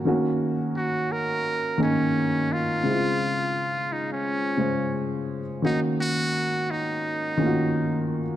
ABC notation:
X:1
M:4/4
L:1/16
Q:"Swing 16ths" 1/4=86
K:Gblyd
V:1 name="Muted trumpet"
z4 G2 B4 D4 F2- | F6 E D6 z3 | E2 G4 E8 z2 |]
V:2 name="Upright piano"
[E,B,DG]6 z4 [E,B,DE]4 z2 | [D,A,C_F=F]6 z4 [D,A,Ac]4 z2 | [E,B,DG]6 z4 [E,B,DFG]4 z2 |]